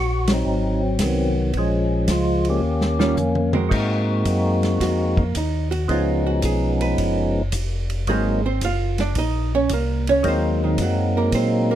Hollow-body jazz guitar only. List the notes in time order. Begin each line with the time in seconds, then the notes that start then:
2.99 D#3 G3 C#4 F4
3.54 G#3 C4 F#4 A#4
4.82 F#4
5.18 A#3
5.37 D#4
5.71 F#4
5.91 F4
6.27 F#4
6.45 G#4
6.82 B4
8.10 G#3 G#4
8.46 C4 C5
8.65 F4 F5
9.00 D4 D5
9.18 D#4 D#5
9.55 C#4 C#5
9.73 A#3 A#4
10.09 C#4 C#5
10.28 C4 C5
10.64 D#3 D#4
10.82 F#3 F#4
11.17 A#3 A#4
11.35 C4 C5
11.71 A#3 A#4